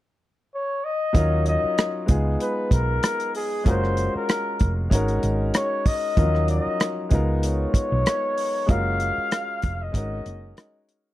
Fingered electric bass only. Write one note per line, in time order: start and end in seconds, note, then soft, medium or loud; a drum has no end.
1.15 1.56 D#2 medium
1.64 muted fingered electric bass stroke soft
2.09 2.36 C#2 medium
2.71 2.98 B1 medium
3.66 4.07 F#1 medium
4.15 muted fingered electric bass stroke soft
4.61 4.87 F1 medium
4.92 5.18 G#1 medium
5.23 5.50 G#1 medium
6.18 6.59 D#2 medium
6.66 muted fingered electric bass stroke soft
7.12 7.65 C#2 medium
7.74 muted fingered electric bass stroke soft
7.92 8.04 B1 medium
8.69 9.10 F#1 medium
9.18 muted fingered electric bass stroke soft
9.64 9.90 F1 medium
9.94 10.21 G#1 medium
10.26 10.52 F#1 medium